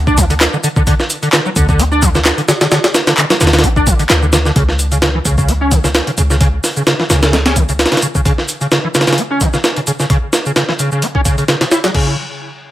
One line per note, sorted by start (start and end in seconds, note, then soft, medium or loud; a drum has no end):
0.00 0.48 D2 medium
0.07 0.19 D4 medium
0.07 kick loud
0.07 shaker soft
0.18 0.24 E3 loud
0.18 kick loud
0.18 closed hi-hat medium
0.18 shaker medium
0.30 0.34 D3 medium
0.30 closed hi-hat soft
0.30 shaker soft
0.41 snare loud
0.41 clap loud
0.41 closed hi-hat medium
0.41 shaker soft
0.53 0.57 D3 medium
0.53 shaker soft
0.63 0.68 D3 loud
0.63 closed hi-hat medium
0.63 shaker medium
0.76 0.82 D3 medium
0.76 kick loud
0.76 shaker soft
0.87 0.94 D3 loud
0.87 kick loud
0.87 closed hi-hat medium
0.87 shaker soft
1.00 snare soft
1.00 shaker soft
1.10 closed hi-hat medium
1.10 shaker medium
1.23 1.28 D3 medium
1.23 closed hi-hat soft
1.23 shaker soft
1.33 1.40 D3 medium
1.33 snare loud
1.33 clap loud
1.33 closed hi-hat medium
1.33 shaker soft
1.46 1.49 F#3 medium
1.46 shaker soft
1.56 2.32 D2 medium
1.56 1.66 D3 medium
1.56 kick medium
1.56 closed hi-hat medium
1.56 shaker medium
1.69 1.80 D3 medium
1.69 kick loud
1.69 shaker soft
1.79 1.83 D4 medium
1.79 closed hi-hat medium
1.79 shaker soft
1.92 2.03 D4 medium
1.92 shaker soft
2.02 2.09 E3 loud
2.02 kick loud
2.02 closed hi-hat medium
2.02 shaker medium
2.15 2.18 D3 medium
2.15 snare medium
2.15 shaker soft
2.25 snare loud
2.25 clap loud
2.25 closed hi-hat medium
2.25 shaker soft
2.37 2.41 D3 medium
2.37 closed hi-hat soft
2.37 shaker soft
2.48 2.52 D3 loud
2.48 snare loud
2.48 closed hi-hat medium
2.48 shaker medium
2.61 2.67 D3 medium
2.61 snare loud
2.61 closed hi-hat medium
2.61 shaker soft
2.71 2.79 D3 loud
2.71 snare loud
2.71 closed hi-hat medium
2.71 shaker soft
2.84 snare loud
2.84 closed hi-hat medium
2.84 shaker soft
2.94 snare loud
2.94 closed hi-hat medium
2.94 shaker medium
3.07 3.13 D3 medium
3.07 snare loud
3.07 closed hi-hat medium
3.07 shaker soft
3.18 3.25 D3 medium
3.18 clap loud
3.18 closed hi-hat medium
3.18 shaker soft
3.30 3.34 F#3 medium
3.30 snare loud
3.30 closed hi-hat medium
3.30 shaker soft
3.41 3.63 D2 loud
3.41 3.51 D3 medium
3.41 snare medium
3.41 closed hi-hat medium
3.41 shaker medium
3.47 snare medium
3.47 closed hi-hat medium
3.53 3.65 D3 medium
3.53 snare loud
3.53 closed hi-hat medium
3.53 shaker soft
3.59 snare medium
3.59 closed hi-hat medium
3.64 4.05 A1 medium
3.64 3.68 D4 medium
3.64 closed hi-hat medium
3.64 shaker soft
3.76 3.88 D4 medium
3.76 kick medium
3.76 shaker soft
3.87 3.94 E3 loud
3.87 kick loud
3.87 closed hi-hat medium
3.87 shaker medium
3.99 4.03 D3 medium
3.99 closed hi-hat soft
3.99 shaker soft
4.10 4.51 D2 medium
4.10 snare loud
4.10 clap loud
4.10 closed hi-hat medium
4.10 shaker soft
4.22 4.26 D3 medium
4.22 shaker soft
4.33 4.37 D3 loud
4.33 snare loud
4.33 closed hi-hat medium
4.33 shaker medium
4.45 4.51 D3 medium
4.45 snare soft
4.45 shaker soft
4.56 5.21 C#2 loud
4.56 4.63 C#3 loud
4.56 kick loud
4.56 closed hi-hat medium
4.56 shaker soft
4.69 snare soft
4.79 closed hi-hat medium
4.79 shaker medium
4.92 4.97 C#3 medium
4.92 closed hi-hat soft
4.92 shaker soft
5.02 5.09 C#3 medium
5.02 snare loud
5.02 closed hi-hat medium
5.02 shaker soft
5.15 5.18 E3 medium
5.25 6.01 C#2 medium
5.25 5.36 C#3 medium
5.25 kick medium
5.25 closed hi-hat medium
5.25 shaker medium
5.38 5.50 C#3 medium
5.38 kick loud
5.38 shaker soft
5.48 5.52 C#4 medium
5.48 closed hi-hat medium
5.48 shaker soft
5.61 5.73 C#4 medium
5.71 5.78 D3 medium
5.71 kick loud
5.71 closed hi-hat medium
5.71 shaker medium
5.84 5.87 C#3 medium
5.84 snare soft
5.84 shaker soft
5.95 snare loud
5.95 closed hi-hat medium
5.95 shaker soft
6.07 6.11 C#3 medium
6.07 closed hi-hat soft
6.18 6.59 C#2 loud
6.18 6.22 C#3 loud
6.18 closed hi-hat medium
6.18 shaker medium
6.30 6.36 C#3 medium
6.30 snare soft
6.30 shaker soft
6.41 6.48 C#3 loud
6.41 kick loud
6.41 closed hi-hat medium
6.41 shaker soft
6.64 snare medium
6.64 open hi-hat medium
6.64 shaker medium
6.77 6.82 C#3 medium
6.77 shaker soft
6.87 6.94 C#3 medium
6.87 snare loud
6.87 closed hi-hat medium
6.87 shaker soft
7.00 7.03 E3 medium
7.00 snare medium
7.10 7.86 C#2 medium
7.10 7.20 C#3 medium
7.10 snare loud
7.10 closed hi-hat medium
7.10 shaker medium
7.23 7.35 C#3 medium
7.23 snare loud
7.23 closed hi-hat medium
7.23 shaker soft
7.33 7.37 C#4 medium
7.33 snare loud
7.33 closed hi-hat medium
7.33 shaker soft
7.46 7.58 C#4 medium
7.46 snare loud
7.46 closed hi-hat medium
7.56 7.63 D3 loud
7.56 kick medium
7.56 closed hi-hat medium
7.56 shaker medium
7.69 7.72 C#3 medium
7.69 closed hi-hat soft
7.69 shaker soft
7.79 snare medium
7.79 closed hi-hat medium
7.79 shaker soft
7.86 snare medium
7.86 closed hi-hat medium
7.92 7.95 C#3 medium
7.92 snare medium
7.92 closed hi-hat medium
7.97 snare medium
7.97 closed hi-hat medium
8.02 8.06 C#3 loud
8.02 closed hi-hat medium
8.02 shaker medium
8.15 8.21 C#3 medium
8.15 kick medium
8.15 shaker soft
8.25 8.32 C#3 medium
8.25 kick loud
8.25 closed hi-hat medium
8.25 shaker soft
8.38 snare soft
8.48 closed hi-hat medium
8.48 shaker medium
8.61 8.67 C#3 medium
8.61 closed hi-hat soft
8.61 shaker soft
8.71 8.79 C#3 medium
8.71 snare loud
8.71 closed hi-hat medium
8.71 shaker soft
8.84 8.88 E3 medium
8.95 9.05 C#3 medium
8.95 snare medium
8.95 closed hi-hat medium
8.95 shaker medium
9.01 snare medium
9.01 closed hi-hat medium
9.07 9.19 C#3 medium
9.07 snare medium
9.07 closed hi-hat medium
9.07 shaker soft
9.13 snare medium
9.13 closed hi-hat medium
9.18 9.22 C#4 medium
9.18 closed hi-hat medium
9.18 shaker soft
9.31 9.43 C#4 medium
9.41 9.48 D3 loud
9.41 kick medium
9.41 closed hi-hat medium
9.41 shaker medium
9.53 9.57 C#3 medium
9.53 snare soft
9.53 shaker soft
9.64 snare loud
9.64 closed hi-hat medium
9.64 shaker soft
9.77 9.80 C#3 medium
9.77 closed hi-hat soft
9.87 9.91 C#3 loud
9.87 closed hi-hat medium
9.87 shaker medium
10.00 10.05 C#3 medium
10.00 snare soft
10.00 shaker soft
10.10 10.17 C#3 loud
10.10 kick loud
10.10 closed hi-hat medium
10.10 shaker soft
10.33 snare loud
10.33 closed hi-hat medium
10.33 shaker medium
10.46 10.52 C#3 medium
10.46 shaker soft
10.56 10.63 C#3 medium
10.56 snare loud
10.56 closed hi-hat medium
10.56 shaker soft
10.69 10.72 E3 medium
10.69 snare medium
10.79 10.90 C#3 medium
10.79 closed hi-hat medium
10.79 shaker medium
10.92 11.04 C#3 medium
10.92 shaker soft
11.02 11.06 C#4 medium
11.02 closed hi-hat medium
11.02 shaker soft
11.15 11.20 C#4 medium
11.15 kick medium
11.25 11.36 C#3 medium
11.25 kick medium
11.25 closed hi-hat medium
11.25 shaker medium
11.38 11.44 C#3 medium
11.38 closed hi-hat soft
11.38 shaker soft
11.48 11.55 C#3 medium
11.48 snare loud
11.48 closed hi-hat medium
11.48 shaker soft
11.61 11.64 C#3 medium
11.61 snare loud
11.61 closed hi-hat medium
11.71 11.78 E4 medium
11.71 snare medium
11.71 closed hi-hat medium
11.71 shaker medium
11.84 11.90 F#3 medium
11.84 snare loud
11.84 closed hi-hat medium
11.84 shaker soft
11.95 12.16 C#3 medium
11.95 kick loud
11.95 crash medium